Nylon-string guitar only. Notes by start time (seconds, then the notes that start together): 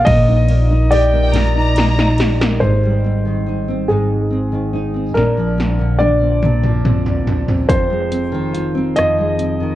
Already playing: A#3 D4 F4
0.07 A#2
0.28 D#4
0.49 A#3
0.70 D#4
0.92 G4
1.13 A#3
1.33 A#2
1.55 D#4
1.76 A#3
1.98 D#4
2.19 G4
2.41 A#3
2.62 G#2 D#4
2.83 G3
3.04 C4
3.25 D#3
3.46 D#4
3.68 C4
3.89 G#2 D#4
4.30 C4
4.52 D#3
4.73 D#4
4.94 C4
5.15 A#2 D4
5.37 F3
5.58 C4
5.79 D3
6.00 D4
6.21 C4
6.43 A#2 D4
6.63 F3
6.85 C4
7.06 D3
7.27 D4
7.49 C4
7.69 F2 F4
7.90 G#3
8.11 C4
8.32 D#3
8.53 F4
8.75 C4
8.97 F2 F4
9.18 G#3
9.39 C4
9.60 D#3